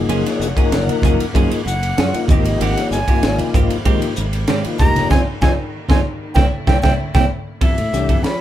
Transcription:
Already playing: string section C#3 G#3 A#3 F#5, tonewheel organ F3 A#3 D#4 G#4
0.09 fingered electric bass F#1, clean electric guitar F3 A#3 C#4 G#4, ride
0.25 muted clean electric guitar stroke, snare, ride
0.39 fingered electric bass F1, muted clean electric guitar stroke, snare, hi-hat pedal
0.56 tonewheel organ F3 A#3 D#4 A#4, clean electric guitar A#3 C#4 G#4, muted fingered electric bass stroke, kick, ride
0.72 fingered electric bass F#1, muted clean electric guitar stroke, snare, ride
0.87 ride, high conga
1.02 fingered electric bass F#1, clean electric guitar F3 A#3 C#4 G#4, kick, hi-hat pedal, low conga
1.20 muted clean electric guitar stroke, ride
1.33 fingered electric bass F#2, tonewheel organ F3 A#3 D#4 G#4, clean electric guitar F3 A#3 C#4 G#4, kick, ride
1.51 muted clean electric guitar stroke, ride
1.66 fingered electric bass F#1, tonewheel organ D#4 F4, flute F#5, muted clean electric guitar stroke, hi-hat pedal
1.83 ride
1.97 fingered electric bass F#2, clean electric guitar F3 A#3 C#4 G#4, snare, ride
2.14 tonewheel organ F3 A#3 D#4 F4, muted fingered electric bass stroke, muted clean electric guitar stroke, ride
2.28 fingered electric bass G#1, string section C3 G3, clean electric guitar D#3 A#3 C4 G4, tonewheel organ F3 A#3 D#4 G4, flute D#5, kick, hi-hat pedal, high conga, low conga
2.45 muted clean electric guitar stroke, ride, high conga
2.60 fingered electric bass G#1, clean electric guitar D#3 A#3 C4 G4, flute F#5, ride
2.77 muted clean electric guitar stroke, snare, ride
2.91 fingered electric bass G1, flute G#5, muted clean electric guitar stroke, snare, hi-hat pedal
3.08 tonewheel organ F3 A#3 D#4 F4, clean electric guitar A#3 C4 G4, muted fingered electric bass stroke, kick, ride
3.23 fingered electric bass G#1, muted clean electric guitar stroke, snare, ride
3.38 ride, high conga
3.54 fingered electric bass G#1, clean electric guitar D#3 A#3 C4 G4, kick, hi-hat pedal, low conga
3.70 muted clean electric guitar stroke, ride
3.85 fingered electric bass G#2, clean electric guitar D#3 A#3 C4 G4, tonewheel organ F3 A#3 D#4 G4, kick, ride
4.02 muted clean electric guitar stroke, ride
4.16 fingered electric bass G#1, tonewheel organ D#4 A#4, muted clean electric guitar stroke, hi-hat pedal
4.33 ride
4.48 fingered electric bass G#2, clean electric guitar D#3 A#3 C4 G4, snare, ride
4.64 tonewheel organ F3 A#3 D#4 F4, muted fingered electric bass stroke, muted clean electric guitar stroke, ride
4.79 fingered electric bass F1, string section D#3, tonewheel organ F3 A#3 D#4 G4, clean electric guitar G#3 A#3 D#4 G4, flute A#5, kick, hi-hat pedal, high conga, low conga
4.96 muted clean electric guitar stroke, snare, ride, high conga
5.10 fingered electric bass F2, clean electric guitar C4 D#4 F4, tonewheel organ C4 D#4 F4, flute G#5, kick, snare, high conga
5.41 fingered electric bass F2, clean electric guitar C4 D#4 F4, tonewheel organ C4 D#4 F4, flute G#5, kick, snare, high conga
5.89 fingered electric bass F2, clean electric guitar C4 D#4 F4, tonewheel organ C4 D#4 F4, flute G#5, kick, snare, high conga
6.34 fingered electric bass C2, string section D3 A3 E4, clean electric guitar A#3 C4 E4, tonewheel organ A#3 C4 E4, flute G5, kick, snare, high conga
6.67 fingered electric bass C2, clean electric guitar A#3 C4 E4, tonewheel organ A#3 C4 E4, flute G5, kick, snare, high conga
6.82 fingered electric bass C2, clean electric guitar A#3 C4 E4, tonewheel organ A#3 C4 E4, flute G5, kick, snare, high conga
7.14 fingered electric bass C2, clean electric guitar A#3 C4 E4, tonewheel organ A#3 C4 E4, flute G5, kick, snare, high conga
7.61 fingered electric bass F2, clean electric guitar G3 B3 E4 A4, flute E5, kick, ride
7.77 fingered electric bass A2, muted clean electric guitar stroke, ride, high conga
7.93 fingered electric bass C2, tonewheel organ E3 A3 D4 G4, muted clean electric guitar stroke, snare, hi-hat pedal
8.09 fingered electric bass F2, clean electric guitar B3 E4 A4, kick, ride, high conga
8.23 fingered electric bass F3, tonewheel organ D4 G4, flute B5, muted clean electric guitar stroke, snare, ride

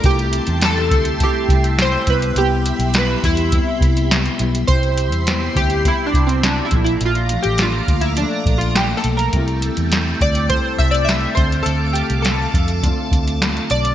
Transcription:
0.03 fingered electric bass C2, clean electric guitar C3 G3, string machine G4 E5 A5 C6, synth keys G4, kick, closed hi-hat
0.07 clean electric guitar A3 E4
0.19 closed hi-hat
0.33 closed hi-hat
0.47 fingered electric bass E2, closed hi-hat
0.61 synth keys A4, snare, closed hi-hat
0.91 fingered electric bass D2, kick, closed hi-hat
1.05 closed hi-hat
1.20 clean electric guitar C3 G3 A3 E4, synth keys G4, kick, closed hi-hat
1.49 fingered electric bass C2, kick, closed hi-hat
1.64 closed hi-hat
1.79 synth keys C5, snare, closed hi-hat
2.07 fingered electric bass C2, clean electric guitar G3 B3 E4, synth keys B4, string machine B5, kick, closed hi-hat
2.22 closed hi-hat
2.35 fingered electric bass C2, clean electric guitar G3, synth keys G4, closed hi-hat
2.40 clean electric guitar B3 E4
2.66 closed hi-hat
2.79 fingered electric bass B1, closed hi-hat
2.94 snare, closed hi-hat
2.98 synth keys B4
3.23 fingered electric bass E2, synth keys E4, kick, closed hi-hat
3.37 closed hi-hat
3.52 clean electric guitar C3 G3 B3 E4, kick, closed hi-hat
3.81 fingered electric bass C2, kick, closed hi-hat
3.97 closed hi-hat
4.11 snare, closed hi-hat
4.26 closed hi-hat
4.39 fingered electric bass B1, clean electric guitar G3 B3 E4, closed hi-hat
4.55 closed hi-hat
4.67 fingered electric bass C2, clean electric guitar C3 G3 E4, string machine G4 E5 B5 C6, synth keys C5, kick, closed hi-hat
4.83 closed hi-hat
4.98 closed hi-hat
5.12 fingered electric bass E2, closed hi-hat
5.27 clean electric guitar C3 G3 B3 E4, snare, closed hi-hat
5.55 fingered electric bass D2, synth keys G4, kick, closed hi-hat
5.70 closed hi-hat
5.84 clean electric guitar C3 G3 B3 E4, synth keys E4, kick, closed hi-hat
6.06 synth keys D4
6.13 fingered electric bass C2, kick, closed hi-hat
6.27 synth keys C4, closed hi-hat
6.43 synth keys D4, snare, closed hi-hat
6.65 synth keys E4
6.70 fingered electric bass A#1, clean electric guitar A#2 F3 A3 D4, string machine A3 F5 A#5 D6, kick, closed hi-hat
6.84 synth keys E4, closed hi-hat
7.01 fingered electric bass A#1, closed hi-hat
7.05 synth keys F4
7.15 closed hi-hat
7.29 clean electric guitar A3 D4, closed hi-hat
7.34 clean electric guitar F3
7.43 fingered electric bass A1, synth keys G4, closed hi-hat
7.58 clean electric guitar A#2 F3 A3 D4, synth keys F4, snare, closed hi-hat
7.88 fingered electric bass D2, kick, closed hi-hat
8.01 synth keys E4, closed hi-hat
8.16 clean electric guitar A#2 F3 A3, synth keys D4, closed hi-hat
8.21 clean electric guitar D4
8.46 fingered electric bass A#1, kick, closed hi-hat
8.58 synth keys F4, closed hi-hat
8.75 synth keys G4, snare, closed hi-hat
8.97 synth keys A4
9.04 fingered electric bass B1, closed hi-hat
9.17 synth keys A#4, closed hi-hat
9.32 fingered electric bass C2, clean electric guitar C3 G3 A3, string machine G5 A5 E6, kick, closed hi-hat
9.37 clean electric guitar E4
9.48 closed hi-hat
9.62 closed hi-hat
9.77 fingered electric bass E2, closed hi-hat
9.92 snare, closed hi-hat
10.21 fingered electric bass D2, synth keys D5, kick, closed hi-hat
10.35 closed hi-hat
10.50 clean electric guitar C3 G3 A3 E4, synth keys C5, kick, closed hi-hat
10.78 fingered electric bass C2, synth keys E5, kick, closed hi-hat
10.91 synth keys D5, closed hi-hat
11.05 synth keys E5
11.09 snare, closed hi-hat
11.35 fingered electric bass D2, clean electric guitar A3 C4 F4, synth keys C5, string machine F5 D6, kick, closed hi-hat
11.40 clean electric guitar D3
11.52 closed hi-hat
11.63 fingered electric bass D2, synth keys A4, closed hi-hat
11.93 synth keys G4, closed hi-hat
12.10 fingered electric bass C2, closed hi-hat
12.22 synth keys A4, snare, closed hi-hat
12.54 fingered electric bass F2, kick, closed hi-hat
12.68 closed hi-hat
12.83 clean electric guitar D3 A3 C4, kick, closed hi-hat
12.87 clean electric guitar F4
13.12 fingered electric bass D2, kick, closed hi-hat
13.28 closed hi-hat
13.42 snare, closed hi-hat
13.57 closed hi-hat
13.70 fingered electric bass B1, synth keys D5, closed hi-hat
13.85 closed hi-hat

